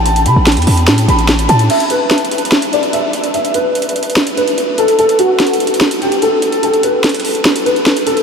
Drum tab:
CC |------------------------------------------------------------------------------------------------|x-----------------------------------------------------------------------------------------------|------------------------------------------------------------------------------------------------|------------------------------------------------------------------------------------------------|
HH |x-----x-----x-----------x--x--x--x--o-----x-----x-----x-----x-----x-----x-----x-----x-----x-----|x-----x-----x-----------x---x---x---x---x---x---x-----x-----x-----x-----x-----------x-----x-----|x-----x-----x-----------x---x---x---x---x---x---x-----x-----x-----x-----x-----------x-----x-----|x-----x-----x-----------x---x---x---x---x---x---x-----x-----x-----x-----x-----------x-----x-----|
SD |------------------------o-----------------------o-----------------------o-----------------------|------------------------o-----------------------o-----------------------------------------------|------------------------------------------------o-----------------------------------------------|------------------------o-----------------------o-----------------------------------------------|

CC |------------------------------------------------------------------------------------------------|
HH |x-----x-----x-----------x--x--x--x--o-----x-----x-----x-----x-----x-----x-----x-----x-----x-----|
SD |------------------------o-----------------------o-----------------------o-----------------------|